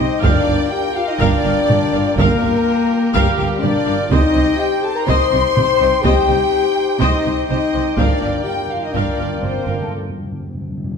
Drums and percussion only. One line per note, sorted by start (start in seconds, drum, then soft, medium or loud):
0.24 taiko medium
1.21 taiko medium
1.70 taiko low-mid medium
2.18 taiko medium
3.15 taiko medium
3.64 taiko low-mid medium
4.12 taiko medium
5.09 taiko medium
5.57 taiko low-mid medium
6.04 taiko medium
7.01 taiko medium
7.97 taiko medium
8.95 taiko medium